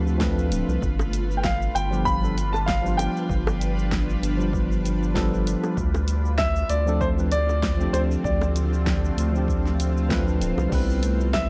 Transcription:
Already playing: analog synth bass D2, ambient pad D3 A3 F4 B4, tine electric piano F3 A3 C4 D4 G4, grand piano F5
0.07 shaker
0.18 tine electric piano F3 A3 C4 D4 B4, kick, snare, shaker
0.39 shaker
0.51 analog synth bass D1, closed hi-hat, shaker
0.68 analog synth bass C2, shaker
0.82 analog synth bass G1, ambient pad G3 D4 B4, kick, shaker
0.99 high bongo, shaker
1.13 closed hi-hat, shaker
1.31 shaker
1.37 grand piano G5
1.44 grand piano F5, kick, snare, shaker
1.62 shaker
1.75 analog synth bass G1, grand piano G5, closed hi-hat, shaker
1.90 tine electric piano F3 G3 B3 D4 G4, shaker
2.05 grand piano B5, kick, shaker
2.21 tine electric piano F3 G3 B3 D4 A4, shaker
2.38 closed hi-hat, shaker
2.53 grand piano A5, high bongo, shaker
2.66 grand piano F5, kick, snare, shaker
2.82 tine electric piano F3 G3 B3
2.86 tine electric piano D4 F4, shaker
2.97 grand piano G5, closed hi-hat, high bongo, shaker
3.17 shaker
3.29 analog synth bass G1, kick, shaker
3.47 high bongo, shaker
3.61 closed hi-hat, shaker
3.79 shaker
3.91 kick, snare, shaker
4.10 shaker
4.22 analog synth bass G1, closed hi-hat, shaker
4.37 tine electric piano F3 G3 B3, shaker
4.41 tine electric piano D4 F4
4.53 kick, shaker
4.72 shaker
4.85 closed hi-hat, shaker
5.03 shaker
5.14 tine electric piano F3 G3 B3 D4 A4, kick, snare, shaker
5.34 shaker
5.47 closed hi-hat, shaker
5.63 high bongo, shaker
5.77 analog synth bass D2, ambient pad D3 A3 C4 F4, kick, shaker
5.94 high bongo, shaker
6.08 closed hi-hat, shaker
6.25 shaker
6.38 grand piano E5, kick, snare, shaker
6.56 shaker
6.70 analog synth bass D2, grand piano D5, closed hi-hat, shaker
6.86 tine electric piano F3 A3 C4 D4 A4, shaker
7.01 grand piano C5, kick, shaker
7.17 tine electric piano F3 A3 C4 D4 B4, shaker
7.32 grand piano D5, closed hi-hat, shaker
7.49 high bongo, shaker
7.63 kick, snare, shaker
7.77 tine electric piano F3 A3 C4, shaker
7.82 tine electric piano D4 G4
7.93 analog synth bass D2, grand piano C5, closed hi-hat, high bongo, shaker
8.11 shaker
8.24 analog synth bass D2, grand piano D5, kick, shaker
8.41 high bongo, shaker
8.56 closed hi-hat, shaker
8.73 shaker
8.86 kick, snare, shaker
9.05 shaker
9.17 analog synth bass D2, closed hi-hat, shaker
9.32 tine electric piano F3 A3 C4, shaker
9.37 tine electric piano D4 G4
9.48 kick, shaker
9.66 snare, shaker
9.80 closed hi-hat, shaker
9.97 shaker
10.09 tine electric piano F3 A3 C4 D4 B4, kick, snare, shaker
10.28 shaker
10.41 analog synth bass D1, closed hi-hat, shaker
10.57 analog synth bass C2, high bongo, shaker
10.69 analog synth bass C2, ambient pad E3 G3 B4, tine electric piano G3 B3 C4, kick, crash, shaker
10.73 ambient pad C3, tine electric piano E4 B4
10.90 shaker
11.03 closed hi-hat, shaker
11.20 shaker
11.33 grand piano E5, kick, snare, shaker

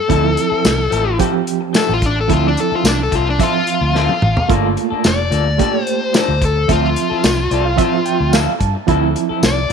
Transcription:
Already playing: lead electric guitar A4
0.08 fingered electric bass D2, clean electric guitar F3 C4 E4 A4, reed electric piano F3 C4 E4, kick, closed hi-hat
0.36 muted clean electric guitar stroke, closed hi-hat
0.50 clean electric guitar C4 E4 A4, muted fingered electric bass stroke
0.64 fingered electric bass C2, muted clean electric guitar stroke, snare, closed hi-hat, tambourine
0.78 muted clean electric guitar stroke
0.90 fingered electric bass A1, clean electric guitar F3 C4 E4 A4, closed hi-hat
1.05 muted clean electric guitar stroke
1.18 clean electric guitar F3 C4 E4 A4, reed electric piano F3 C4 G4, kick, closed hi-hat
1.33 muted clean electric guitar stroke
1.47 closed hi-hat
1.61 muted clean electric guitar stroke
1.73 clean electric guitar F3 C4 E4 A4, snare, closed hi-hat, tambourine
1.78 lead electric guitar A4
1.89 fingered electric bass A1
1.94 lead electric guitar F4
2.01 muted clean electric guitar stroke, kick, closed hi-hat
2.06 lead electric guitar D4
2.16 muted clean electric guitar stroke
2.21 lead electric guitar A4
2.28 fingered electric bass D2, reed electric piano F3 C4 E4, clean electric guitar F3 C4 E4 A4, kick, closed hi-hat
2.33 lead electric guitar F4
2.48 lead electric guitar D4
2.56 muted clean electric guitar stroke, closed hi-hat
2.60 lead electric guitar A4
2.71 clean electric guitar C4 E4 A4, muted fingered electric bass stroke
2.75 lead electric guitar F4
2.84 fingered electric bass C2, snare, closed hi-hat, tambourine
2.89 lead electric guitar D4
2.98 muted clean electric guitar stroke
3.03 lead electric guitar A4
3.11 fingered electric bass C2, clean electric guitar F3 C4 E4 A4, kick, closed hi-hat
3.15 lead electric guitar F4
3.26 lead electric guitar D4, muted clean electric guitar stroke
3.39 clean electric guitar F3 C4 E4 A4, reed electric piano F3 C4 E5, lead electric guitar F4, kick, closed hi-hat
3.54 muted clean electric guitar stroke
3.67 closed hi-hat
3.81 fingered electric bass D2, muted clean electric guitar stroke
3.94 clean electric guitar F3 C4 E4 A4, snare
4.09 high tom
4.21 fingered electric bass A1, muted clean electric guitar stroke, mid tom
4.37 muted clean electric guitar stroke, floor tom
4.49 fingered electric bass G1, clean electric guitar F3 A#3 D4 A4, reed electric piano A3 A#3 F4, kick, closed hi-hat
4.76 muted clean electric guitar stroke, closed hi-hat
4.90 clean electric guitar A#3 D4 A4, muted fingered electric bass stroke
5.04 fingered electric bass F1, lead electric guitar D5, muted clean electric guitar stroke, snare, closed hi-hat, tambourine
5.18 muted clean electric guitar stroke
5.30 fingered electric bass D2, clean electric guitar F3 A#3 D4 A4, closed hi-hat
5.46 muted clean electric guitar stroke
5.58 clean electric guitar F3 A#3 D4 A4, reed electric piano A3 A#3 G4, kick, closed hi-hat
5.73 muted clean electric guitar stroke
5.84 lead electric guitar C5, closed hi-hat
6.00 muted clean electric guitar stroke
6.13 clean electric guitar F3 A#3 D4 A4, snare, closed hi-hat, tambourine
6.17 lead electric guitar C5
6.28 fingered electric bass D2
6.41 lead electric guitar A4, muted clean electric guitar stroke, kick, closed hi-hat
6.56 muted clean electric guitar stroke
6.68 fingered electric bass D2, reed electric piano F3 C4 E5, clean electric guitar F3 C4 E4 A4, lead electric guitar F4, kick, closed hi-hat
6.96 muted clean electric guitar stroke, closed hi-hat
7.10 clean electric guitar C4 E4 A4, muted fingered electric bass stroke
7.23 fingered electric bass C2, muted clean electric guitar stroke, snare, closed hi-hat, tambourine
7.38 muted clean electric guitar stroke
7.51 fingered electric bass C2, clean electric guitar F3 C4 E4 A4, reed electric piano D5, closed hi-hat
7.65 reed electric piano F5, muted clean electric guitar stroke
7.77 reed electric piano F3 C4 E5, clean electric guitar F3 C4, kick, closed hi-hat
7.81 clean electric guitar E4 A4
7.94 muted clean electric guitar stroke
8.05 reed electric piano G5, closed hi-hat
8.20 fingered electric bass D2, muted clean electric guitar stroke
8.33 clean electric guitar F3 C4 E4 A4, reed electric piano F5, snare, closed hi-hat, tambourine
8.60 fingered electric bass G2, reed electric piano A5, muted clean electric guitar stroke, kick, closed hi-hat
8.75 muted clean electric guitar stroke
8.87 fingered electric bass D2, reed electric piano F3 C4 E4, clean electric guitar F3 C4 E4 A4, kick, closed hi-hat
9.16 muted clean electric guitar stroke, closed hi-hat
9.29 clean electric guitar C4 E4 A4, muted fingered electric bass stroke
9.42 fingered electric bass C2, lead electric guitar D5, muted clean electric guitar stroke, snare, closed hi-hat, tambourine
9.57 muted clean electric guitar stroke
9.69 clean electric guitar F3

